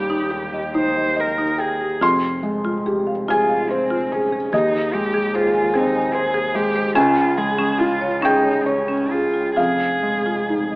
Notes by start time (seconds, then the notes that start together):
Already playing: D#2 G3 G4 G5
0.10 D#4
0.30 G4
0.53 D#5
0.74 D#4 C5
0.96 D#5
1.16 A#4 D#5
1.38 D#4
1.58 G#4 G5
1.81 G4
2.01 F1 F2 F4 C6
2.43 G#3
2.65 F4
2.86 G4 G#4
3.07 F5
3.28 F4 G#4 G#5
3.49 F5
3.70 C4 C5
3.90 F4
4.12 C#4 G#4
4.32 G#4
4.52 D#2 D#4 G#4 D#5
4.94 G#3 G4
5.14 G#4
5.34 F4 G#4 C5
5.54 G#5
5.74 C4 D#4 G#4
5.95 G#5
6.14 G#4 C5
6.34 G#4
6.55 G#3 G4
6.75 C5
6.95 C#2 C#4 F4 G#5
7.38 G#3 G#4
7.58 C#4
7.78 F4
8.01 C#5
8.21 C#4 D#4 G#4 G5
8.44 C#5
8.65 C#4 C#5
8.88 C#4
9.11 F4 G#4
9.34 F4
9.57 F1 F2 F4 G#4 F5
10.03 G#3
10.26 F4
10.49 D#4 G#4
10.71 D#5